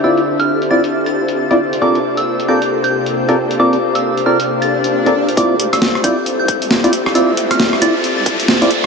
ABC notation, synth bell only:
X:1
M:4/4
L:1/16
Q:"Swing 16ths" 1/4=135
K:Dm
V:1 name="Synth bell"
e' z2 f' z2 a' z2 a'6 z | d' z2 e' z2 g' z2 g'6 z | d' z2 e' z2 f' z2 a'6 z | d' z2 e' z2 g' z2 g'6 z |
e' z2 f' z2 a' z2 a'6 z |]